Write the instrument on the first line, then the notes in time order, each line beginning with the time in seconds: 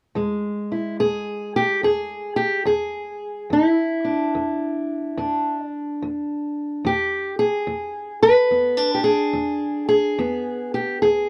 steel-string acoustic guitar
0.15 E2 G#3
0.72 E4
1.00 E2 G#4
1.56 G4
1.83 E2 G#4
2.36 G4
2.65 E2 G#4
3.50 E2 E4
4.05 D4
4.35 E2
5.17 E2 D4
5.66 D4
6.02 E2
6.85 E2 G4
7.39 G#4
7.67 E2
8.23 B4
8.51 E2 B3
8.77 D4
8.94 G4
9.04 G#4
9.33 E2
9.89 G#4
10.19 E2 B3
10.74 G4
11.02 E2 G#4